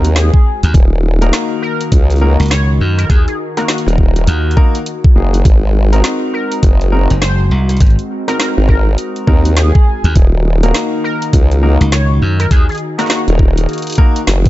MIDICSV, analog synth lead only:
0, 0, Header, 1, 2, 480
1, 0, Start_track
1, 0, Tempo, 588235
1, 609, Time_signature, 4, 2, 24, 8
1, 11827, End_track
2, 0, Start_track
2, 0, Title_t, "Analog synth lead"
2, 0, Program_c, 0, 81
2, 127, Note_on_c, 0, 68, 101
2, 667, Note_off_c, 0, 68, 0
2, 1324, Note_on_c, 0, 70, 92
2, 1478, Note_off_c, 0, 70, 0
2, 2042, Note_on_c, 0, 73, 97
2, 2197, Note_off_c, 0, 73, 0
2, 2432, Note_on_c, 0, 70, 96
2, 2508, Note_off_c, 0, 70, 0
2, 2524, Note_on_c, 0, 68, 92
2, 2621, Note_off_c, 0, 68, 0
2, 2673, Note_on_c, 0, 68, 76
2, 2734, Note_off_c, 0, 68, 0
2, 2912, Note_on_c, 0, 66, 92
2, 2973, Note_off_c, 0, 66, 0
2, 3008, Note_on_c, 0, 66, 73
2, 3103, Note_off_c, 0, 66, 0
2, 5169, Note_on_c, 0, 70, 96
2, 5320, Note_off_c, 0, 70, 0
2, 5887, Note_on_c, 0, 72, 95
2, 6039, Note_off_c, 0, 72, 0
2, 6754, Note_on_c, 0, 70, 90
2, 6814, Note_off_c, 0, 70, 0
2, 6847, Note_on_c, 0, 70, 73
2, 6943, Note_off_c, 0, 70, 0
2, 7085, Note_on_c, 0, 70, 90
2, 7238, Note_off_c, 0, 70, 0
2, 7810, Note_on_c, 0, 68, 101
2, 8349, Note_off_c, 0, 68, 0
2, 9008, Note_on_c, 0, 70, 96
2, 9160, Note_off_c, 0, 70, 0
2, 9727, Note_on_c, 0, 73, 96
2, 9879, Note_off_c, 0, 73, 0
2, 10116, Note_on_c, 0, 70, 97
2, 10190, Note_off_c, 0, 70, 0
2, 10209, Note_on_c, 0, 68, 93
2, 10304, Note_off_c, 0, 68, 0
2, 10356, Note_on_c, 0, 68, 73
2, 10415, Note_off_c, 0, 68, 0
2, 10592, Note_on_c, 0, 66, 94
2, 10653, Note_off_c, 0, 66, 0
2, 10685, Note_on_c, 0, 66, 76
2, 10782, Note_off_c, 0, 66, 0
2, 11827, End_track
0, 0, End_of_file